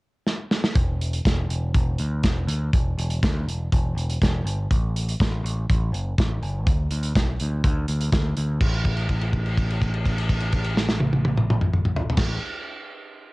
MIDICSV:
0, 0, Header, 1, 3, 480
1, 0, Start_track
1, 0, Tempo, 490998
1, 739, Time_signature, 4, 2, 24, 8
1, 6019, Tempo, 485830
1, 13105, End_track
2, 0, Start_track
2, 0, Title_t, "Picked electric bass"
2, 0, Program_c, 0, 34
2, 738, Note_on_c, 0, 28, 83
2, 1170, Note_off_c, 0, 28, 0
2, 1223, Note_on_c, 0, 28, 78
2, 1438, Note_off_c, 0, 28, 0
2, 1457, Note_on_c, 0, 28, 68
2, 1674, Note_off_c, 0, 28, 0
2, 1706, Note_on_c, 0, 28, 82
2, 1920, Note_off_c, 0, 28, 0
2, 1951, Note_on_c, 0, 38, 81
2, 2163, Note_off_c, 0, 38, 0
2, 2191, Note_on_c, 0, 28, 83
2, 2403, Note_off_c, 0, 28, 0
2, 2418, Note_on_c, 0, 38, 84
2, 2636, Note_off_c, 0, 38, 0
2, 2675, Note_on_c, 0, 28, 79
2, 2886, Note_off_c, 0, 28, 0
2, 2910, Note_on_c, 0, 28, 85
2, 3123, Note_off_c, 0, 28, 0
2, 3159, Note_on_c, 0, 38, 78
2, 3368, Note_off_c, 0, 38, 0
2, 3381, Note_on_c, 0, 28, 71
2, 3598, Note_off_c, 0, 28, 0
2, 3641, Note_on_c, 0, 28, 90
2, 3849, Note_off_c, 0, 28, 0
2, 3863, Note_on_c, 0, 28, 80
2, 4079, Note_off_c, 0, 28, 0
2, 4125, Note_on_c, 0, 28, 91
2, 4332, Note_off_c, 0, 28, 0
2, 4345, Note_on_c, 0, 31, 85
2, 4561, Note_off_c, 0, 31, 0
2, 4605, Note_on_c, 0, 33, 76
2, 5026, Note_off_c, 0, 33, 0
2, 5085, Note_on_c, 0, 33, 72
2, 5290, Note_off_c, 0, 33, 0
2, 5312, Note_on_c, 0, 33, 80
2, 5523, Note_off_c, 0, 33, 0
2, 5568, Note_on_c, 0, 33, 86
2, 5771, Note_off_c, 0, 33, 0
2, 5788, Note_on_c, 0, 30, 80
2, 6000, Note_off_c, 0, 30, 0
2, 6042, Note_on_c, 0, 33, 84
2, 6249, Note_off_c, 0, 33, 0
2, 6279, Note_on_c, 0, 30, 79
2, 6526, Note_off_c, 0, 30, 0
2, 6526, Note_on_c, 0, 38, 82
2, 6732, Note_off_c, 0, 38, 0
2, 6761, Note_on_c, 0, 38, 76
2, 6969, Note_off_c, 0, 38, 0
2, 7002, Note_on_c, 0, 35, 78
2, 7210, Note_off_c, 0, 35, 0
2, 7257, Note_on_c, 0, 38, 69
2, 7458, Note_off_c, 0, 38, 0
2, 7483, Note_on_c, 0, 38, 87
2, 7690, Note_off_c, 0, 38, 0
2, 7724, Note_on_c, 0, 38, 80
2, 7931, Note_off_c, 0, 38, 0
2, 7960, Note_on_c, 0, 38, 80
2, 8168, Note_off_c, 0, 38, 0
2, 8207, Note_on_c, 0, 38, 72
2, 8412, Note_off_c, 0, 38, 0
2, 8440, Note_on_c, 0, 33, 81
2, 11880, Note_off_c, 0, 33, 0
2, 11962, Note_on_c, 0, 33, 89
2, 12166, Note_off_c, 0, 33, 0
2, 13105, End_track
3, 0, Start_track
3, 0, Title_t, "Drums"
3, 263, Note_on_c, 9, 38, 60
3, 361, Note_off_c, 9, 38, 0
3, 503, Note_on_c, 9, 38, 84
3, 601, Note_off_c, 9, 38, 0
3, 626, Note_on_c, 9, 38, 96
3, 724, Note_off_c, 9, 38, 0
3, 738, Note_on_c, 9, 42, 63
3, 739, Note_on_c, 9, 36, 111
3, 836, Note_off_c, 9, 42, 0
3, 837, Note_off_c, 9, 36, 0
3, 991, Note_on_c, 9, 42, 59
3, 1089, Note_off_c, 9, 42, 0
3, 1106, Note_on_c, 9, 42, 60
3, 1204, Note_off_c, 9, 42, 0
3, 1224, Note_on_c, 9, 36, 93
3, 1229, Note_on_c, 9, 42, 66
3, 1239, Note_on_c, 9, 38, 99
3, 1322, Note_off_c, 9, 36, 0
3, 1327, Note_off_c, 9, 42, 0
3, 1337, Note_off_c, 9, 38, 0
3, 1469, Note_on_c, 9, 42, 62
3, 1567, Note_off_c, 9, 42, 0
3, 1704, Note_on_c, 9, 42, 65
3, 1705, Note_on_c, 9, 36, 104
3, 1802, Note_off_c, 9, 36, 0
3, 1802, Note_off_c, 9, 42, 0
3, 1938, Note_on_c, 9, 42, 57
3, 2036, Note_off_c, 9, 42, 0
3, 2182, Note_on_c, 9, 42, 61
3, 2185, Note_on_c, 9, 36, 88
3, 2191, Note_on_c, 9, 38, 91
3, 2279, Note_off_c, 9, 42, 0
3, 2283, Note_off_c, 9, 36, 0
3, 2289, Note_off_c, 9, 38, 0
3, 2428, Note_on_c, 9, 42, 71
3, 2525, Note_off_c, 9, 42, 0
3, 2671, Note_on_c, 9, 36, 112
3, 2676, Note_on_c, 9, 42, 67
3, 2768, Note_off_c, 9, 36, 0
3, 2773, Note_off_c, 9, 42, 0
3, 2919, Note_on_c, 9, 42, 70
3, 3017, Note_off_c, 9, 42, 0
3, 3032, Note_on_c, 9, 42, 60
3, 3130, Note_off_c, 9, 42, 0
3, 3156, Note_on_c, 9, 36, 105
3, 3158, Note_on_c, 9, 42, 59
3, 3167, Note_on_c, 9, 38, 98
3, 3254, Note_off_c, 9, 36, 0
3, 3255, Note_off_c, 9, 42, 0
3, 3265, Note_off_c, 9, 38, 0
3, 3408, Note_on_c, 9, 42, 59
3, 3506, Note_off_c, 9, 42, 0
3, 3641, Note_on_c, 9, 36, 114
3, 3647, Note_on_c, 9, 42, 64
3, 3739, Note_off_c, 9, 36, 0
3, 3745, Note_off_c, 9, 42, 0
3, 3888, Note_on_c, 9, 42, 49
3, 3986, Note_off_c, 9, 42, 0
3, 4006, Note_on_c, 9, 42, 57
3, 4103, Note_off_c, 9, 42, 0
3, 4123, Note_on_c, 9, 36, 89
3, 4129, Note_on_c, 9, 42, 57
3, 4139, Note_on_c, 9, 38, 88
3, 4220, Note_off_c, 9, 36, 0
3, 4227, Note_off_c, 9, 42, 0
3, 4237, Note_off_c, 9, 38, 0
3, 4367, Note_on_c, 9, 42, 58
3, 4465, Note_off_c, 9, 42, 0
3, 4602, Note_on_c, 9, 36, 94
3, 4605, Note_on_c, 9, 42, 60
3, 4700, Note_off_c, 9, 36, 0
3, 4703, Note_off_c, 9, 42, 0
3, 4851, Note_on_c, 9, 42, 64
3, 4949, Note_off_c, 9, 42, 0
3, 4973, Note_on_c, 9, 42, 64
3, 5070, Note_off_c, 9, 42, 0
3, 5084, Note_on_c, 9, 36, 91
3, 5088, Note_on_c, 9, 42, 64
3, 5098, Note_on_c, 9, 38, 101
3, 5182, Note_off_c, 9, 36, 0
3, 5186, Note_off_c, 9, 42, 0
3, 5195, Note_off_c, 9, 38, 0
3, 5335, Note_on_c, 9, 42, 64
3, 5433, Note_off_c, 9, 42, 0
3, 5568, Note_on_c, 9, 36, 97
3, 5574, Note_on_c, 9, 42, 71
3, 5666, Note_off_c, 9, 36, 0
3, 5672, Note_off_c, 9, 42, 0
3, 5809, Note_on_c, 9, 42, 53
3, 5906, Note_off_c, 9, 42, 0
3, 6045, Note_on_c, 9, 36, 103
3, 6051, Note_on_c, 9, 42, 62
3, 6061, Note_on_c, 9, 38, 94
3, 6144, Note_off_c, 9, 36, 0
3, 6150, Note_off_c, 9, 42, 0
3, 6160, Note_off_c, 9, 38, 0
3, 6285, Note_on_c, 9, 42, 64
3, 6384, Note_off_c, 9, 42, 0
3, 6523, Note_on_c, 9, 36, 106
3, 6523, Note_on_c, 9, 42, 65
3, 6621, Note_off_c, 9, 42, 0
3, 6622, Note_off_c, 9, 36, 0
3, 6759, Note_on_c, 9, 42, 69
3, 6858, Note_off_c, 9, 42, 0
3, 6880, Note_on_c, 9, 42, 61
3, 6978, Note_off_c, 9, 42, 0
3, 7004, Note_on_c, 9, 36, 100
3, 7004, Note_on_c, 9, 42, 64
3, 7014, Note_on_c, 9, 38, 99
3, 7103, Note_off_c, 9, 36, 0
3, 7103, Note_off_c, 9, 42, 0
3, 7113, Note_off_c, 9, 38, 0
3, 7243, Note_on_c, 9, 42, 67
3, 7342, Note_off_c, 9, 42, 0
3, 7483, Note_on_c, 9, 36, 99
3, 7485, Note_on_c, 9, 42, 63
3, 7582, Note_off_c, 9, 36, 0
3, 7583, Note_off_c, 9, 42, 0
3, 7721, Note_on_c, 9, 42, 58
3, 7820, Note_off_c, 9, 42, 0
3, 7845, Note_on_c, 9, 42, 61
3, 7944, Note_off_c, 9, 42, 0
3, 7961, Note_on_c, 9, 42, 59
3, 7962, Note_on_c, 9, 36, 99
3, 7971, Note_on_c, 9, 38, 96
3, 8060, Note_off_c, 9, 42, 0
3, 8061, Note_off_c, 9, 36, 0
3, 8070, Note_off_c, 9, 38, 0
3, 8202, Note_on_c, 9, 42, 60
3, 8301, Note_off_c, 9, 42, 0
3, 8439, Note_on_c, 9, 36, 94
3, 8439, Note_on_c, 9, 49, 80
3, 8538, Note_off_c, 9, 36, 0
3, 8538, Note_off_c, 9, 49, 0
3, 8678, Note_on_c, 9, 49, 41
3, 8679, Note_on_c, 9, 36, 68
3, 8777, Note_off_c, 9, 49, 0
3, 8778, Note_off_c, 9, 36, 0
3, 8795, Note_on_c, 9, 57, 44
3, 8894, Note_off_c, 9, 57, 0
3, 8916, Note_on_c, 9, 49, 41
3, 8918, Note_on_c, 9, 36, 56
3, 9015, Note_off_c, 9, 49, 0
3, 9016, Note_off_c, 9, 36, 0
3, 9038, Note_on_c, 9, 57, 40
3, 9137, Note_off_c, 9, 57, 0
3, 9154, Note_on_c, 9, 49, 41
3, 9155, Note_on_c, 9, 36, 53
3, 9252, Note_off_c, 9, 49, 0
3, 9254, Note_off_c, 9, 36, 0
3, 9280, Note_on_c, 9, 57, 42
3, 9379, Note_off_c, 9, 57, 0
3, 9396, Note_on_c, 9, 36, 63
3, 9400, Note_on_c, 9, 49, 44
3, 9495, Note_off_c, 9, 36, 0
3, 9498, Note_off_c, 9, 49, 0
3, 9524, Note_on_c, 9, 57, 40
3, 9623, Note_off_c, 9, 57, 0
3, 9635, Note_on_c, 9, 36, 53
3, 9643, Note_on_c, 9, 49, 37
3, 9733, Note_off_c, 9, 36, 0
3, 9742, Note_off_c, 9, 49, 0
3, 9754, Note_on_c, 9, 57, 47
3, 9853, Note_off_c, 9, 57, 0
3, 9871, Note_on_c, 9, 36, 60
3, 9875, Note_on_c, 9, 49, 45
3, 9969, Note_off_c, 9, 36, 0
3, 9974, Note_off_c, 9, 49, 0
3, 9994, Note_on_c, 9, 57, 47
3, 10093, Note_off_c, 9, 57, 0
3, 10105, Note_on_c, 9, 36, 57
3, 10108, Note_on_c, 9, 49, 49
3, 10204, Note_off_c, 9, 36, 0
3, 10207, Note_off_c, 9, 49, 0
3, 10215, Note_on_c, 9, 57, 45
3, 10313, Note_off_c, 9, 57, 0
3, 10333, Note_on_c, 9, 49, 50
3, 10339, Note_on_c, 9, 36, 59
3, 10432, Note_off_c, 9, 49, 0
3, 10438, Note_off_c, 9, 36, 0
3, 10452, Note_on_c, 9, 57, 45
3, 10551, Note_off_c, 9, 57, 0
3, 10579, Note_on_c, 9, 38, 86
3, 10678, Note_off_c, 9, 38, 0
3, 10693, Note_on_c, 9, 38, 82
3, 10791, Note_off_c, 9, 38, 0
3, 10808, Note_on_c, 9, 48, 82
3, 10907, Note_off_c, 9, 48, 0
3, 10932, Note_on_c, 9, 48, 74
3, 11031, Note_off_c, 9, 48, 0
3, 11051, Note_on_c, 9, 48, 91
3, 11150, Note_off_c, 9, 48, 0
3, 11175, Note_on_c, 9, 47, 85
3, 11274, Note_off_c, 9, 47, 0
3, 11301, Note_on_c, 9, 47, 95
3, 11399, Note_off_c, 9, 47, 0
3, 11410, Note_on_c, 9, 45, 87
3, 11509, Note_off_c, 9, 45, 0
3, 11531, Note_on_c, 9, 45, 75
3, 11629, Note_off_c, 9, 45, 0
3, 11645, Note_on_c, 9, 45, 90
3, 11744, Note_off_c, 9, 45, 0
3, 11757, Note_on_c, 9, 43, 88
3, 11855, Note_off_c, 9, 43, 0
3, 11888, Note_on_c, 9, 43, 100
3, 11959, Note_on_c, 9, 49, 93
3, 11964, Note_on_c, 9, 36, 97
3, 11969, Note_on_c, 9, 38, 92
3, 11987, Note_off_c, 9, 43, 0
3, 12058, Note_off_c, 9, 49, 0
3, 12063, Note_off_c, 9, 36, 0
3, 12068, Note_off_c, 9, 38, 0
3, 13105, End_track
0, 0, End_of_file